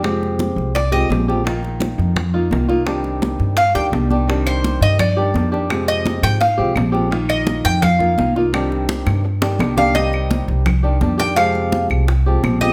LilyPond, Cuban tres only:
\new Staff \with { instrumentName = "Cuban tres" } { \time 4/4 \key c \minor \tempo 4 = 169 r2 d''8 ees''8 r4 | r1 | r2 f''8 g''8 r4 | r8 c''4 ees''8 d''4. r8 |
r8 ees''4 g''8 f''4. r8 | r8 ees''4 g''8 f''4. r8 | r2. r8 f''8 | ees''4. r2 g''8 |
f''4. r2 ees''8 | }